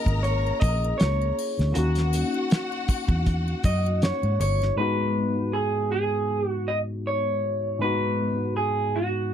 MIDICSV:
0, 0, Header, 1, 7, 480
1, 0, Start_track
1, 0, Key_signature, 5, "minor"
1, 0, Tempo, 756620
1, 1113, Time_signature, 4, 2, 24, 8
1, 5923, End_track
2, 0, Start_track
2, 0, Title_t, "String section"
2, 0, Program_c, 0, 48
2, 0, Note_on_c, 0, 70, 87
2, 0, Note_on_c, 0, 82, 96
2, 847, Note_off_c, 0, 70, 0
2, 848, Note_off_c, 0, 82, 0
2, 1112, Note_on_c, 0, 66, 85
2, 1118, Note_on_c, 0, 78, 98
2, 2767, Note_off_c, 0, 66, 0
2, 2770, Note_off_c, 0, 78, 0
2, 5923, End_track
3, 0, Start_track
3, 0, Title_t, "Clean electric guitar"
3, 0, Program_c, 1, 27
3, 0, Note_on_c, 1, 75, 112
3, 142, Note_off_c, 1, 75, 0
3, 145, Note_on_c, 1, 73, 91
3, 378, Note_off_c, 1, 73, 0
3, 380, Note_on_c, 1, 75, 96
3, 617, Note_off_c, 1, 75, 0
3, 620, Note_on_c, 1, 73, 94
3, 1104, Note_on_c, 1, 66, 84
3, 1121, Note_off_c, 1, 73, 0
3, 2317, Note_on_c, 1, 75, 85
3, 2523, Note_off_c, 1, 66, 0
3, 2558, Note_off_c, 1, 75, 0
3, 2560, Note_on_c, 1, 73, 86
3, 2788, Note_off_c, 1, 73, 0
3, 2796, Note_on_c, 1, 73, 87
3, 3027, Note_off_c, 1, 73, 0
3, 3030, Note_on_c, 1, 71, 101
3, 3511, Note_on_c, 1, 68, 90
3, 3525, Note_off_c, 1, 71, 0
3, 3747, Note_off_c, 1, 68, 0
3, 3754, Note_on_c, 1, 68, 93
3, 4116, Note_off_c, 1, 68, 0
3, 4116, Note_on_c, 1, 66, 93
3, 4237, Note_on_c, 1, 75, 91
3, 4248, Note_off_c, 1, 66, 0
3, 4301, Note_off_c, 1, 75, 0
3, 4486, Note_on_c, 1, 73, 95
3, 4956, Note_off_c, 1, 73, 0
3, 4959, Note_on_c, 1, 71, 104
3, 5432, Note_off_c, 1, 71, 0
3, 5434, Note_on_c, 1, 68, 91
3, 5680, Note_off_c, 1, 68, 0
3, 5682, Note_on_c, 1, 66, 83
3, 5923, Note_off_c, 1, 66, 0
3, 5923, End_track
4, 0, Start_track
4, 0, Title_t, "Tine electric piano"
4, 0, Program_c, 2, 4
4, 0, Control_c, 2, 64, 127
4, 0, Note_on_c, 2, 58, 68
4, 0, Note_on_c, 2, 61, 62
4, 0, Note_on_c, 2, 64, 57
4, 0, Note_on_c, 2, 68, 67
4, 1081, Note_off_c, 2, 58, 0
4, 1088, Note_off_c, 2, 61, 0
4, 1092, Note_on_c, 2, 58, 58
4, 1093, Note_off_c, 2, 64, 0
4, 1099, Note_off_c, 2, 68, 0
4, 1106, Note_on_c, 2, 61, 53
4, 1120, Note_on_c, 2, 63, 56
4, 1123, Control_c, 2, 64, 0
4, 1132, Note_on_c, 2, 66, 71
4, 1242, Control_c, 2, 64, 127
4, 2997, Note_off_c, 2, 58, 0
4, 3003, Note_off_c, 2, 61, 0
4, 3011, Note_off_c, 2, 63, 0
4, 3017, Note_off_c, 2, 66, 0
4, 3018, Note_on_c, 2, 44, 59
4, 3028, Note_on_c, 2, 56, 58
4, 3034, Note_on_c, 2, 59, 57
4, 3041, Control_c, 2, 64, 0
4, 3044, Note_on_c, 2, 63, 57
4, 3051, Note_on_c, 2, 66, 63
4, 3169, Control_c, 2, 64, 127
4, 4919, Note_off_c, 2, 44, 0
4, 4925, Note_off_c, 2, 56, 0
4, 4927, Note_off_c, 2, 59, 0
4, 4933, Note_off_c, 2, 63, 0
4, 4936, Note_off_c, 2, 66, 0
4, 4940, Note_on_c, 2, 44, 66
4, 4946, Note_on_c, 2, 56, 52
4, 4954, Note_on_c, 2, 59, 53
4, 4965, Note_on_c, 2, 63, 62
4, 4975, Note_on_c, 2, 66, 67
4, 5923, Note_off_c, 2, 44, 0
4, 5923, Note_off_c, 2, 56, 0
4, 5923, Note_off_c, 2, 59, 0
4, 5923, Note_off_c, 2, 63, 0
4, 5923, Note_off_c, 2, 66, 0
4, 5923, End_track
5, 0, Start_track
5, 0, Title_t, "Fingered electric bass"
5, 0, Program_c, 3, 33
5, 42, Note_on_c, 3, 32, 94
5, 321, Note_off_c, 3, 32, 0
5, 396, Note_on_c, 3, 34, 88
5, 586, Note_off_c, 3, 34, 0
5, 641, Note_on_c, 3, 37, 93
5, 829, Note_off_c, 3, 37, 0
5, 1009, Note_on_c, 3, 38, 95
5, 1095, Note_off_c, 3, 38, 0
5, 1120, Note_on_c, 3, 39, 108
5, 1411, Note_off_c, 3, 39, 0
5, 1960, Note_on_c, 3, 40, 90
5, 2240, Note_off_c, 3, 40, 0
5, 2313, Note_on_c, 3, 42, 88
5, 2606, Note_off_c, 3, 42, 0
5, 2685, Note_on_c, 3, 44, 80
5, 2772, Note_off_c, 3, 44, 0
5, 2792, Note_on_c, 3, 31, 88
5, 2983, Note_off_c, 3, 31, 0
5, 5923, End_track
6, 0, Start_track
6, 0, Title_t, "Muted fingered electric bass strokes"
6, 1835, Note_on_c, 9, 29, 41
6, 1899, Note_off_c, 9, 29, 0
6, 5923, End_track
7, 0, Start_track
7, 0, Title_t, "Drums"
7, 40, Note_on_c, 9, 36, 98
7, 50, Note_on_c, 9, 80, 54
7, 103, Note_off_c, 9, 36, 0
7, 114, Note_off_c, 9, 80, 0
7, 153, Note_on_c, 9, 42, 97
7, 159, Note_on_c, 9, 80, 47
7, 217, Note_off_c, 9, 42, 0
7, 222, Note_off_c, 9, 80, 0
7, 296, Note_on_c, 9, 80, 44
7, 359, Note_off_c, 9, 80, 0
7, 388, Note_on_c, 9, 42, 73
7, 393, Note_on_c, 9, 36, 104
7, 405, Note_on_c, 9, 81, 69
7, 452, Note_off_c, 9, 42, 0
7, 457, Note_off_c, 9, 36, 0
7, 469, Note_off_c, 9, 81, 0
7, 536, Note_on_c, 9, 80, 55
7, 599, Note_off_c, 9, 80, 0
7, 632, Note_on_c, 9, 42, 99
7, 640, Note_on_c, 9, 38, 109
7, 645, Note_on_c, 9, 80, 52
7, 695, Note_off_c, 9, 42, 0
7, 703, Note_off_c, 9, 38, 0
7, 708, Note_off_c, 9, 80, 0
7, 771, Note_on_c, 9, 80, 45
7, 835, Note_off_c, 9, 80, 0
7, 879, Note_on_c, 9, 46, 50
7, 880, Note_on_c, 9, 81, 67
7, 943, Note_off_c, 9, 46, 0
7, 943, Note_off_c, 9, 81, 0
7, 1011, Note_on_c, 9, 80, 53
7, 1014, Note_on_c, 9, 38, 33
7, 1074, Note_off_c, 9, 80, 0
7, 1077, Note_off_c, 9, 38, 0
7, 1111, Note_on_c, 9, 42, 97
7, 1116, Note_on_c, 9, 80, 45
7, 1174, Note_off_c, 9, 42, 0
7, 1180, Note_off_c, 9, 80, 0
7, 1239, Note_on_c, 9, 42, 52
7, 1243, Note_on_c, 9, 80, 44
7, 1252, Note_on_c, 9, 38, 36
7, 1303, Note_off_c, 9, 42, 0
7, 1307, Note_off_c, 9, 80, 0
7, 1315, Note_off_c, 9, 38, 0
7, 1351, Note_on_c, 9, 81, 74
7, 1357, Note_on_c, 9, 42, 78
7, 1415, Note_off_c, 9, 81, 0
7, 1420, Note_off_c, 9, 42, 0
7, 1486, Note_on_c, 9, 80, 48
7, 1550, Note_off_c, 9, 80, 0
7, 1587, Note_on_c, 9, 80, 41
7, 1593, Note_on_c, 9, 42, 94
7, 1601, Note_on_c, 9, 38, 113
7, 1650, Note_off_c, 9, 80, 0
7, 1657, Note_off_c, 9, 42, 0
7, 1664, Note_off_c, 9, 38, 0
7, 1726, Note_on_c, 9, 80, 49
7, 1789, Note_off_c, 9, 80, 0
7, 1828, Note_on_c, 9, 42, 73
7, 1832, Note_on_c, 9, 36, 82
7, 1835, Note_on_c, 9, 81, 73
7, 1892, Note_off_c, 9, 42, 0
7, 1895, Note_off_c, 9, 36, 0
7, 1899, Note_off_c, 9, 81, 0
7, 1957, Note_on_c, 9, 36, 104
7, 1961, Note_on_c, 9, 80, 50
7, 2021, Note_off_c, 9, 36, 0
7, 2025, Note_off_c, 9, 80, 0
7, 2070, Note_on_c, 9, 42, 76
7, 2070, Note_on_c, 9, 80, 43
7, 2072, Note_on_c, 9, 36, 84
7, 2133, Note_off_c, 9, 80, 0
7, 2134, Note_off_c, 9, 42, 0
7, 2136, Note_off_c, 9, 36, 0
7, 2207, Note_on_c, 9, 80, 48
7, 2270, Note_off_c, 9, 80, 0
7, 2307, Note_on_c, 9, 42, 68
7, 2311, Note_on_c, 9, 36, 99
7, 2316, Note_on_c, 9, 81, 71
7, 2370, Note_off_c, 9, 42, 0
7, 2374, Note_off_c, 9, 36, 0
7, 2379, Note_off_c, 9, 81, 0
7, 2451, Note_on_c, 9, 80, 50
7, 2515, Note_off_c, 9, 80, 0
7, 2550, Note_on_c, 9, 42, 89
7, 2557, Note_on_c, 9, 38, 112
7, 2558, Note_on_c, 9, 80, 49
7, 2613, Note_off_c, 9, 42, 0
7, 2621, Note_off_c, 9, 38, 0
7, 2621, Note_off_c, 9, 80, 0
7, 2685, Note_on_c, 9, 80, 50
7, 2749, Note_off_c, 9, 80, 0
7, 2796, Note_on_c, 9, 42, 74
7, 2796, Note_on_c, 9, 81, 69
7, 2859, Note_off_c, 9, 42, 0
7, 2859, Note_off_c, 9, 81, 0
7, 2929, Note_on_c, 9, 80, 51
7, 2932, Note_on_c, 9, 38, 33
7, 2992, Note_off_c, 9, 80, 0
7, 2995, Note_off_c, 9, 38, 0
7, 5923, End_track
0, 0, End_of_file